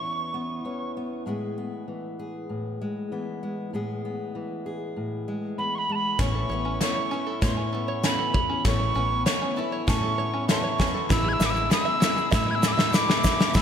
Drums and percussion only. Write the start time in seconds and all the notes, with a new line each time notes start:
6.19 kick, snare, closed hi-hat
6.81 snare, closed hi-hat
7.42 kick, snare, closed hi-hat
8.04 snare, closed hi-hat
8.34 kick
8.65 kick, snare, closed hi-hat
9.26 snare, closed hi-hat
9.88 kick, snare, closed hi-hat
10.49 snare, closed hi-hat
10.80 kick, snare
11.10 kick, snare, closed hi-hat, shaker
11.41 snare, shaker
11.56 shaker
11.71 snare, closed hi-hat, shaker
12.02 snare, shaker
12.17 shaker
12.32 kick, snare, closed hi-hat, shaker
12.63 snare, shaker
12.78 snare, shaker
12.94 snare, closed hi-hat, shaker
13.10 snare
13.24 kick, snare, shaker
13.39 snare, shaker
13.54 kick, snare, shaker